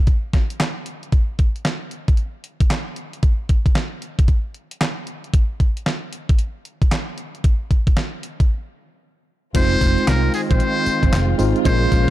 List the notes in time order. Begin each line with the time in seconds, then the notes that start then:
0.07 kick, closed hi-hat
0.33 kick, snare, closed hi-hat
0.50 closed hi-hat
0.60 snare, clap, closed hi-hat
0.86 closed hi-hat
1.03 closed hi-hat
1.12 kick, closed hi-hat
1.39 kick, closed hi-hat
1.56 closed hi-hat
1.65 snare, clap, closed hi-hat
1.91 closed hi-hat
2.08 kick, closed hi-hat
2.17 closed hi-hat
2.44 closed hi-hat
2.60 kick, closed hi-hat
2.70 snare, clap, closed hi-hat
2.96 closed hi-hat
3.13 closed hi-hat
3.23 kick, closed hi-hat
3.49 kick, closed hi-hat
3.66 kick, closed hi-hat
3.75 snare, clap, closed hi-hat
4.02 closed hi-hat
4.19 kick, closed hi-hat
4.28 kick, closed hi-hat
4.54 closed hi-hat
4.71 closed hi-hat
4.81 snare, clap, closed hi-hat
5.07 closed hi-hat
5.24 closed hi-hat
5.34 kick, closed hi-hat
5.60 kick, closed hi-hat
5.77 closed hi-hat
5.86 snare, clap, closed hi-hat
6.13 closed hi-hat
6.29 kick, closed hi-hat
6.39 closed hi-hat
6.65 closed hi-hat
6.82 kick, closed hi-hat
6.92 snare, clap, closed hi-hat
7.18 closed hi-hat
7.35 closed hi-hat
7.44 kick, closed hi-hat
7.71 kick, closed hi-hat
7.87 kick, closed hi-hat
7.97 snare, clap, closed hi-hat
8.23 closed hi-hat
8.40 kick, closed hi-hat
9.54 F1 D#3 G#3 C4 D#4 F4 C5, kick, closed hi-hat, crash, tambourine
9.81 F1, kick, closed hi-hat, tambourine
9.98 closed hi-hat
10.07 C2 A#4, snare, clap, closed hi-hat, tambourine
10.34 G#4, open hi-hat, tambourine
10.51 A#1 C5, kick, closed hi-hat
10.60 closed hi-hat
10.86 muted fingered electric bass stroke, closed hi-hat, tambourine
11.03 G#1, kick, closed hi-hat
11.13 F1, snare, clap, closed hi-hat, tambourine
11.38 G#1 G#3 C4 D#4 F4 C5, open hi-hat, tambourine
11.56 closed hi-hat
11.65 A#1 C#3 G#3 A#3 C#4 F4 A#4 C5, kick, closed hi-hat, tambourine
11.92 A#1, kick, closed hi-hat, tambourine